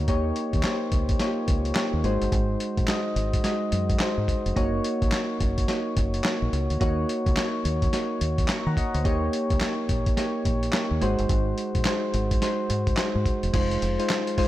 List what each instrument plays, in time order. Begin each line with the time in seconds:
0.08 fingered electric bass D#2, synth keys A#3 D#4 G4 C#5, kick, closed hi-hat
0.36 closed hi-hat
0.53 fingered electric bass D#2, kick, closed hi-hat
0.63 synth keys A#3 D#4 G4 C5, snare, clap, closed hi-hat
0.71 synth keys C#5
0.92 fingered electric bass C#2, kick, closed hi-hat
1.09 kick, closed hi-hat
1.19 synth keys A#3 D#4 F4 C#5, snare, closed hi-hat
1.27 synth keys G4
1.48 fingered electric bass C#2, kick, closed hi-hat
1.65 closed hi-hat
1.75 synth keys A#3 D#4 G4 C#5, snare, clap, closed hi-hat
1.93 fingered electric bass D#2
2.04 fingered electric bass G#1, synth keys G#3 D#4 F#4 C5, closed hi-hat
2.22 fingered electric bass G1, closed hi-hat
2.32 fingered electric bass G#1, kick, closed hi-hat
2.60 closed hi-hat
2.77 fingered electric bass A#1, kick, closed hi-hat
2.88 synth keys G#3 D#4 F#4 D#5, snare, clap, closed hi-hat
3.16 fingered electric bass G#1, closed hi-hat
3.33 kick, closed hi-hat
3.44 synth keys G#3 D#4 F#4 D#5, snare, closed hi-hat
3.72 fingered electric bass F#2, closed hi-hat
3.89 kick, closed hi-hat
4.00 synth keys G#3 D#4 F#4 C5, snare, clap, closed hi-hat
4.18 fingered electric bass G#2
4.28 kick, closed hi-hat
4.46 fingered electric bass F1, closed hi-hat
4.56 fingered electric bass F#1, synth keys A#3 D#4 F#4 C#5, kick, closed hi-hat
4.84 closed hi-hat
5.02 fingered electric bass G#1, kick, closed hi-hat
5.12 synth keys A#3 D#4 F#4 C#5, snare, clap, closed hi-hat
5.40 fingered electric bass F#1, kick, closed hi-hat
5.58 kick, closed hi-hat
5.68 synth keys A#3 D#4 F#4 C#5, snare, closed hi-hat
5.97 fingered electric bass F#1, kick, closed hi-hat
6.14 closed hi-hat
6.24 synth keys A#3 D#4 F#4 C#5, snare, clap, closed hi-hat
6.42 fingered electric bass A#1
6.53 fingered electric bass C#2, closed hi-hat
6.70 fingered electric bass D2, closed hi-hat
6.80 fingered electric bass D#2, synth keys A#3 D#4 F#4 C#5, kick, closed hi-hat
7.09 closed hi-hat
7.26 fingered electric bass C#2, kick, closed hi-hat
7.36 synth keys A#3 D#4 F#4 C#5, snare, clap, closed hi-hat
7.65 fingered electric bass D#2, closed hi-hat
7.82 kick, closed hi-hat
7.93 synth keys A#3 D#4 F#4 C#5, snare, closed hi-hat
8.21 fingered electric bass D#2, closed hi-hat
8.38 kick, closed hi-hat
8.48 synth keys A#5 C#6, snare, clap, closed hi-hat
8.67 fingered electric bass D#3, synth keys F#5 A#5
8.77 synth keys D#5 F#5, kick, closed hi-hat
8.94 fingered electric bass D2, synth keys C5 D#5, closed hi-hat
9.05 fingered electric bass D#2, synth keys A#3 D#4 G4 C#5, kick, closed hi-hat
9.33 closed hi-hat
9.50 fingered electric bass C#2, kick, closed hi-hat
9.60 synth keys A#3 D#4 G4 C#5, snare, clap, closed hi-hat
9.89 fingered electric bass A#1, kick, closed hi-hat
10.06 kick, closed hi-hat
10.17 synth keys A#3 D#4 G4 C#5, snare, closed hi-hat
10.45 fingered electric bass A#1, kick, closed hi-hat
10.63 closed hi-hat
10.73 synth keys A#3 D#4 G4 C#5, snare, clap, closed hi-hat
10.91 fingered electric bass D#2
11.01 fingered electric bass G#1, synth keys G#3 D#4 F#4 C5, closed hi-hat
11.19 fingered electric bass G1, closed hi-hat
11.29 fingered electric bass G#1, kick, closed hi-hat
11.58 closed hi-hat
11.75 fingered electric bass A#1, kick, closed hi-hat
11.85 synth keys G#3 D#4 F#4 C5, snare, clap, closed hi-hat
12.14 fingered electric bass G#1, closed hi-hat
12.31 kick, closed hi-hat
12.41 synth keys G#3 D#4 F#4 C5, snare, closed hi-hat
12.70 fingered electric bass G#2, closed hi-hat
12.87 kick, closed hi-hat
12.97 synth keys G#3 D#4 F#4 C5, snare, clap, closed hi-hat
13.15 fingered electric bass G#2
13.26 kick, closed hi-hat
13.43 fingered electric bass E1, closed hi-hat
13.53 fingered electric bass F1, synth keys G#3 D#4 F4 C5, kick, closed hi-hat, crash
13.71 closed hi-hat
13.82 fingered electric bass F1, closed hi-hat
13.99 synth keys G#3 D#4 F4 C5, closed hi-hat
14.09 snare, clap, closed hi-hat
14.27 closed hi-hat
14.37 synth keys G#3 D#4 F4 C5, muted fingered electric bass stroke, kick, open hi-hat